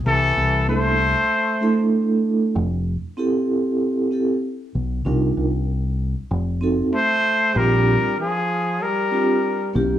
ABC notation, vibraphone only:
X:1
M:4/4
L:1/8
Q:"Swing 16ths" 1/4=96
K:Fdor
V:1 name="Vibraphone"
z2 [B,D=E=A] z2 [=A,DEA]3 | z2 [C=EG=A]3 [CEGA] z2 | [DEFB] z4 [CE_G=A] z2 | [CDFG] z4 [CDFG] z [B,_D=EG] |]